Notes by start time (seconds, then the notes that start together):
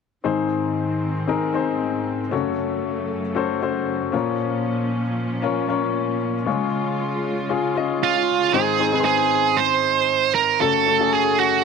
0.24 G#2 D#3 C4 D#4 G#4 C5
1.27 C4 D#4 G#4 A#4
1.54 C4 D#4 G#4 C5
2.31 F#2 C#3 A3 C#4 F#4 A4 C#5
3.35 C#4 F#4 A4 C5
3.61 C#4 F#4 A4 C5
4.12 A#2 F3 C#4 F4 A#4 C#5
5.42 C#4 F4 A#4 C#5
5.68 C#4 F4 A#4 C#5
6.46 C#3 G#3 C#4 F4 G#4 C#5
7.49 C#4 F4 G#4 C#5
7.76 C#4 F4 G#4 D#5
8.04 F4
8.53 G#2 D#3 C4 D#4 G#4 C5
8.79 C4 D#4 G#4 C5
8.92 C4 D#4 G#4 B4
9.00 C5
9.05 G#4
9.57 C5
10.35 A#4
10.60 F#2 C#3 A3 C#4 F#4 A4
10.86 A3 C#4 F#4 A4
10.99 A3 C#4 F#4 G#4
11.13 G#4
11.40 F#4